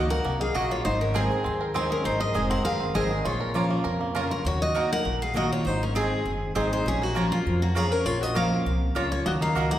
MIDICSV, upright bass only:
0, 0, Header, 1, 2, 480
1, 0, Start_track
1, 0, Key_signature, -5, "minor"
1, 0, Tempo, 300451
1, 1352, Time_signature, 4, 2, 24, 8
1, 15637, End_track
2, 0, Start_track
2, 0, Title_t, "Upright bass"
2, 0, Program_c, 0, 32
2, 0, Note_on_c, 0, 37, 90
2, 325, Note_off_c, 0, 37, 0
2, 397, Note_on_c, 0, 36, 86
2, 802, Note_off_c, 0, 36, 0
2, 877, Note_on_c, 0, 34, 84
2, 1283, Note_off_c, 0, 34, 0
2, 1360, Note_on_c, 0, 32, 95
2, 2058, Note_off_c, 0, 32, 0
2, 2319, Note_on_c, 0, 39, 86
2, 3018, Note_off_c, 0, 39, 0
2, 3270, Note_on_c, 0, 32, 96
2, 3621, Note_off_c, 0, 32, 0
2, 3752, Note_on_c, 0, 29, 89
2, 4160, Note_off_c, 0, 29, 0
2, 4226, Note_on_c, 0, 30, 85
2, 4637, Note_off_c, 0, 30, 0
2, 4713, Note_on_c, 0, 32, 87
2, 5120, Note_off_c, 0, 32, 0
2, 5192, Note_on_c, 0, 34, 97
2, 5894, Note_off_c, 0, 34, 0
2, 6153, Note_on_c, 0, 41, 84
2, 6854, Note_off_c, 0, 41, 0
2, 7105, Note_on_c, 0, 39, 90
2, 7809, Note_off_c, 0, 39, 0
2, 8070, Note_on_c, 0, 34, 80
2, 8772, Note_off_c, 0, 34, 0
2, 9031, Note_on_c, 0, 32, 90
2, 9733, Note_off_c, 0, 32, 0
2, 9991, Note_on_c, 0, 30, 82
2, 10400, Note_off_c, 0, 30, 0
2, 10472, Note_on_c, 0, 32, 84
2, 10881, Note_off_c, 0, 32, 0
2, 10952, Note_on_c, 0, 34, 98
2, 11654, Note_off_c, 0, 34, 0
2, 11918, Note_on_c, 0, 41, 83
2, 12618, Note_off_c, 0, 41, 0
2, 12862, Note_on_c, 0, 34, 93
2, 13568, Note_off_c, 0, 34, 0
2, 13824, Note_on_c, 0, 36, 81
2, 14236, Note_off_c, 0, 36, 0
2, 14313, Note_on_c, 0, 37, 84
2, 14721, Note_off_c, 0, 37, 0
2, 14793, Note_on_c, 0, 39, 98
2, 15144, Note_off_c, 0, 39, 0
2, 15268, Note_on_c, 0, 37, 88
2, 15637, Note_off_c, 0, 37, 0
2, 15637, End_track
0, 0, End_of_file